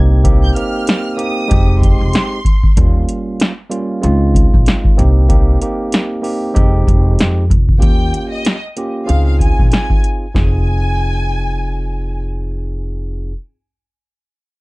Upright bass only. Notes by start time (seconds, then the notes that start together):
Already playing: C2
1.51 F1
2.01 F1
2.77 D#2
4.04 C#2
4.54 A#1
4.99 C2
6.57 F1
6.88 F1
7.20 F2
7.51 F1
7.82 D#2
9.09 C#2
9.59 A#1
10.35 F1